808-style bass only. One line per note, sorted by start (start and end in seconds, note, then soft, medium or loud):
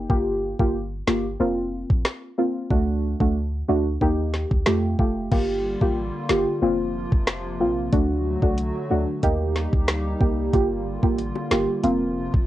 0.10 0.54 G1 loud
0.59 1.02 G1 loud
1.07 1.36 G1 medium
1.40 1.84 F1 loud
1.90 2.04 A#1 medium
2.71 3.15 D2 loud
3.20 3.63 D2 loud
3.68 3.97 D2 medium
4.01 4.45 D#2 loud
4.51 4.65 D2 medium
4.66 4.95 F2 loud
4.99 5.28 F1 medium
5.32 5.76 G1 loud
5.81 6.10 A1 medium
6.29 6.45 G1 medium
6.62 7.06 F1 loud
7.12 7.61 F1 loud
7.60 7.89 A#1 medium
7.93 8.37 D2 loud
8.42 8.71 C2 medium
8.90 9.06 D2 medium
9.23 9.67 D#2 loud
9.73 10.15 D2 medium
10.21 10.49 C2 medium
10.54 10.97 G1 loud
11.03 11.32 A1 medium
11.51 11.66 G1 loud
11.84 12.28 F1 loud
12.34 12.47 F1 medium